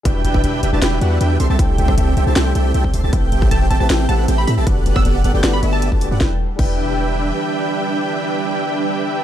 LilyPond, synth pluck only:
\new Staff \with { instrumentName = "Synth pluck" } { \time 4/4 \key e \minor \tempo 4 = 156 r1 | r1 | r4 a''16 r16 a''16 a''16 r8 a''16 r8 b''16 b''16 r16 | r8. e'''8. r8. b''16 r16 a''8. r8 |
r1 | r1 | }